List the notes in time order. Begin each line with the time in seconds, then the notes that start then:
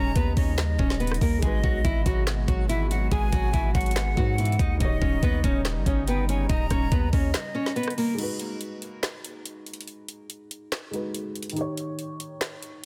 Already playing: D#1 C#3 D#3 G3 C#4 D#4 G4 C#5 A#5
0.16 D#2 B3 B4, kick, closed hi-hat
0.37 D#2 C#4 C#5 D#5, kick, open hi-hat
0.58 snare, clap, closed hi-hat
0.78 D#1 C#4 C#5, kick
0.90 snare
1.00 B3 B4, closed hi-hat
1.07 closed hi-hat
1.12 cross-stick, closed hi-hat
1.21 D#2 A#3 A#4, kick, open hi-hat
1.38 G#3 D#4
1.42 G#1 B2 G#3 F#4 G#4 D#5, kick, closed hi-hat
1.47 B4
1.64 B1 F#3 F#4, kick
1.84 G#1 E3 E4, kick, closed hi-hat
2.06 G#1 F#3 F#4, kick, closed hi-hat
2.27 snare, clap, closed hi-hat
2.48 G#1 F#3 F#4, kick, closed hi-hat
2.69 E3 E4 E5, closed hi-hat
2.90 F#3 F#4 F#5, closed hi-hat
3.11 G#1 G#3 G#4 G#5, kick, closed hi-hat
3.32 G#1 F#3 F#4, kick, closed hi-hat
3.53 G#1 E3 E4, kick, closed hi-hat
3.74 G#1 F#3 F#4 F#5, kick, closed hi-hat
3.81 closed hi-hat
3.86 closed hi-hat
3.91 closed hi-hat
3.96 snare, clap, closed hi-hat
4.15 G#2 F#3 G#3 D#4 F#4, kick
4.19 B4
4.38 E3 E4, closed hi-hat
4.45 closed hi-hat
4.52 closed hi-hat
4.59 D#2 D#4 D#5, kick, closed hi-hat
4.76 D#3 D#4
4.80 D#1 C#3 G3 D#4 G4 D#5, kick, closed hi-hat
4.85 C#5
5.01 D#1 C#4 C#5, kick
5.23 D#2 B3 B4, kick, closed hi-hat
5.44 D#1 C#4 C#5, kick, closed hi-hat
5.65 snare, clap, closed hi-hat
5.76 G1
5.86 G1 C#4 C#5, kick, closed hi-hat
6.07 B3 B4 G5, closed hi-hat
6.29 C#4 C#5 G#5, closed hi-hat
6.49 D#1 D#4 D#5 A#5, kick, closed hi-hat
6.70 D#1 C#4 C#5, kick, cross-stick, closed hi-hat
6.92 D#2 B3 B4, kick, closed hi-hat
7.13 D#2 C#4 C#5 D#5, kick, open hi-hat
7.34 snare, clap, closed hi-hat
7.54 C#4 C#5
7.66 snare
7.76 B3 B4, closed hi-hat
7.83 closed hi-hat
7.88 cross-stick, closed hi-hat
7.98 A#3 A#4, open hi-hat
8.14 G#3 D#4, closed hi-hat
8.19 F#4, crash
8.23 B4
8.39 closed hi-hat
8.61 closed hi-hat
8.82 closed hi-hat
9.03 snare, clap, closed hi-hat
9.24 closed hi-hat
9.46 closed hi-hat
9.66 closed hi-hat
9.74 closed hi-hat
9.81 closed hi-hat
9.88 closed hi-hat
10.08 closed hi-hat
10.30 closed hi-hat
10.51 closed hi-hat
10.72 snare, clap, closed hi-hat
10.91 G#3 D#4 F#4, closed hi-hat
10.95 B4
11.15 closed hi-hat
11.35 closed hi-hat
11.42 closed hi-hat
11.50 D#3, closed hi-hat
11.55 D#4 G4, closed hi-hat
11.61 C#5
11.77 closed hi-hat
11.99 closed hi-hat
12.20 closed hi-hat
12.41 snare, clap, closed hi-hat
12.63 closed hi-hat